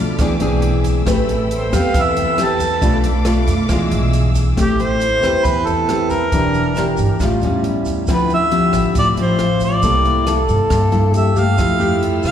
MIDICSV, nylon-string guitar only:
0, 0, Header, 1, 2, 480
1, 0, Start_track
1, 0, Key_signature, 0, "minor"
1, 0, Tempo, 437956
1, 1177, Time_signature, 4, 2, 24, 8
1, 13496, End_track
2, 0, Start_track
2, 0, Title_t, "Nylon-string guitar"
2, 0, Program_c, 0, 24
2, 0, Note_on_c, 0, 47, 58
2, 0, Note_on_c, 0, 53, 54
2, 0, Note_on_c, 0, 57, 58
2, 0, Note_on_c, 0, 62, 73
2, 179, Note_off_c, 0, 53, 0
2, 180, Note_off_c, 0, 57, 0
2, 180, Note_off_c, 0, 62, 0
2, 185, Note_off_c, 0, 47, 0
2, 220, Note_on_c, 0, 52, 60
2, 223, Note_on_c, 0, 60, 66
2, 229, Note_on_c, 0, 62, 65
2, 238, Note_on_c, 0, 68, 60
2, 359, Note_off_c, 0, 60, 0
2, 365, Note_off_c, 0, 62, 0
2, 366, Note_off_c, 0, 68, 0
2, 448, Note_on_c, 0, 60, 67
2, 453, Note_on_c, 0, 62, 60
2, 458, Note_on_c, 0, 68, 75
2, 1134, Note_off_c, 0, 60, 0
2, 1137, Note_off_c, 0, 62, 0
2, 1138, Note_off_c, 0, 68, 0
2, 1155, Note_off_c, 0, 52, 0
2, 1160, Note_on_c, 0, 60, 64
2, 1162, Note_on_c, 0, 57, 61
2, 1168, Note_on_c, 0, 67, 60
2, 1174, Note_on_c, 0, 71, 64
2, 1850, Note_off_c, 0, 60, 0
2, 1853, Note_off_c, 0, 67, 0
2, 1854, Note_off_c, 0, 71, 0
2, 1889, Note_on_c, 0, 60, 62
2, 1894, Note_on_c, 0, 67, 69
2, 1894, Note_on_c, 0, 71, 72
2, 2106, Note_off_c, 0, 57, 0
2, 2135, Note_on_c, 0, 52, 59
2, 2575, Note_off_c, 0, 60, 0
2, 2575, Note_off_c, 0, 71, 0
2, 2576, Note_off_c, 0, 67, 0
2, 2614, Note_on_c, 0, 60, 54
2, 2621, Note_on_c, 0, 67, 61
2, 2621, Note_on_c, 0, 71, 59
2, 3072, Note_off_c, 0, 52, 0
2, 3076, Note_off_c, 0, 60, 0
2, 3078, Note_off_c, 0, 67, 0
2, 3079, Note_off_c, 0, 71, 0
2, 3082, Note_on_c, 0, 47, 59
2, 3089, Note_on_c, 0, 62, 64
2, 3090, Note_on_c, 0, 57, 59
2, 3097, Note_on_c, 0, 65, 61
2, 3400, Note_off_c, 0, 62, 0
2, 3401, Note_off_c, 0, 57, 0
2, 3406, Note_off_c, 0, 65, 0
2, 3560, Note_on_c, 0, 57, 68
2, 3566, Note_on_c, 0, 62, 59
2, 3569, Note_on_c, 0, 65, 69
2, 3877, Note_off_c, 0, 57, 0
2, 3880, Note_off_c, 0, 65, 0
2, 3881, Note_off_c, 0, 62, 0
2, 4026, Note_off_c, 0, 47, 0
2, 4049, Note_on_c, 0, 52, 59
2, 4059, Note_on_c, 0, 56, 62
2, 4067, Note_on_c, 0, 62, 59
2, 4069, Note_on_c, 0, 65, 64
2, 4701, Note_off_c, 0, 56, 0
2, 4707, Note_off_c, 0, 62, 0
2, 4707, Note_off_c, 0, 65, 0
2, 4990, Note_off_c, 0, 52, 0
2, 5005, Note_on_c, 0, 57, 60
2, 5011, Note_on_c, 0, 60, 53
2, 5017, Note_on_c, 0, 67, 53
2, 5696, Note_off_c, 0, 60, 0
2, 5696, Note_off_c, 0, 67, 0
2, 5724, Note_on_c, 0, 60, 58
2, 5731, Note_on_c, 0, 67, 58
2, 5734, Note_on_c, 0, 71, 59
2, 5947, Note_off_c, 0, 57, 0
2, 5976, Note_on_c, 0, 52, 58
2, 6412, Note_off_c, 0, 60, 0
2, 6416, Note_off_c, 0, 67, 0
2, 6416, Note_off_c, 0, 71, 0
2, 6461, Note_on_c, 0, 60, 53
2, 6462, Note_on_c, 0, 67, 57
2, 6471, Note_on_c, 0, 71, 65
2, 6782, Note_off_c, 0, 60, 0
2, 6782, Note_off_c, 0, 67, 0
2, 6787, Note_off_c, 0, 71, 0
2, 6913, Note_off_c, 0, 52, 0
2, 6936, Note_on_c, 0, 52, 58
2, 6944, Note_on_c, 0, 62, 55
2, 6951, Note_on_c, 0, 67, 56
2, 6956, Note_on_c, 0, 70, 65
2, 7248, Note_off_c, 0, 62, 0
2, 7254, Note_off_c, 0, 67, 0
2, 7255, Note_off_c, 0, 70, 0
2, 7420, Note_on_c, 0, 62, 58
2, 7428, Note_on_c, 0, 67, 57
2, 7430, Note_on_c, 0, 70, 65
2, 7728, Note_off_c, 0, 62, 0
2, 7730, Note_off_c, 0, 67, 0
2, 7733, Note_off_c, 0, 70, 0
2, 7874, Note_off_c, 0, 52, 0
2, 7888, Note_on_c, 0, 55, 65
2, 7898, Note_on_c, 0, 45, 62
2, 7898, Note_on_c, 0, 61, 56
2, 7909, Note_on_c, 0, 65, 59
2, 8095, Note_off_c, 0, 55, 0
2, 8099, Note_off_c, 0, 61, 0
2, 8105, Note_off_c, 0, 65, 0
2, 8157, Note_on_c, 0, 55, 65
2, 8159, Note_on_c, 0, 61, 64
2, 8829, Note_off_c, 0, 61, 0
2, 8830, Note_off_c, 0, 55, 0
2, 8835, Note_off_c, 0, 45, 0
2, 8859, Note_on_c, 0, 53, 52
2, 8862, Note_on_c, 0, 60, 56
2, 8864, Note_on_c, 0, 50, 53
2, 8868, Note_on_c, 0, 64, 59
2, 9168, Note_off_c, 0, 53, 0
2, 9169, Note_off_c, 0, 60, 0
2, 9170, Note_off_c, 0, 64, 0
2, 9329, Note_on_c, 0, 53, 55
2, 9337, Note_on_c, 0, 60, 61
2, 9342, Note_on_c, 0, 64, 65
2, 9798, Note_off_c, 0, 50, 0
2, 9806, Note_on_c, 0, 45, 60
2, 10016, Note_off_c, 0, 53, 0
2, 10020, Note_off_c, 0, 60, 0
2, 10021, Note_off_c, 0, 64, 0
2, 10055, Note_on_c, 0, 53, 63
2, 10060, Note_on_c, 0, 60, 62
2, 10739, Note_off_c, 0, 53, 0
2, 10740, Note_off_c, 0, 60, 0
2, 10749, Note_off_c, 0, 45, 0
2, 10777, Note_on_c, 0, 58, 58
2, 10782, Note_on_c, 0, 48, 60
2, 10786, Note_on_c, 0, 64, 63
2, 10788, Note_on_c, 0, 69, 67
2, 11220, Note_off_c, 0, 58, 0
2, 11224, Note_off_c, 0, 64, 0
2, 11225, Note_off_c, 0, 69, 0
2, 11257, Note_on_c, 0, 58, 62
2, 11265, Note_on_c, 0, 64, 59
2, 11265, Note_on_c, 0, 69, 64
2, 11717, Note_off_c, 0, 48, 0
2, 11728, Note_on_c, 0, 43, 58
2, 11940, Note_off_c, 0, 58, 0
2, 11943, Note_off_c, 0, 69, 0
2, 11944, Note_off_c, 0, 64, 0
2, 11962, Note_on_c, 0, 58, 64
2, 11968, Note_on_c, 0, 64, 68
2, 11973, Note_on_c, 0, 69, 64
2, 12413, Note_off_c, 0, 58, 0
2, 12416, Note_off_c, 0, 64, 0
2, 12417, Note_off_c, 0, 69, 0
2, 12450, Note_on_c, 0, 57, 66
2, 12457, Note_on_c, 0, 67, 69
2, 12670, Note_off_c, 0, 43, 0
2, 12694, Note_on_c, 0, 53, 54
2, 12906, Note_off_c, 0, 57, 0
2, 12918, Note_on_c, 0, 57, 60
2, 12921, Note_off_c, 0, 67, 0
2, 12926, Note_on_c, 0, 64, 61
2, 12934, Note_on_c, 0, 67, 75
2, 13496, Note_off_c, 0, 53, 0
2, 13496, Note_off_c, 0, 57, 0
2, 13496, Note_off_c, 0, 64, 0
2, 13496, Note_off_c, 0, 67, 0
2, 13496, End_track
0, 0, End_of_file